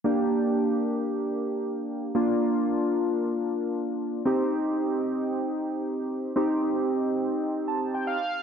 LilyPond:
\new Staff \with { instrumentName = "Synth keys" } { \time 4/4 \key g \minor \tempo 4 = 114 << { r1 | r1 | r1 | r2 r8 a''8 g''16 f''8. | } \\ { <bes d' g'>1 | <bes d' f'>1 | <c' ees' g'>1 | <c' ees' g'>2.~ <c' ees' g'>8 r8 | } >> }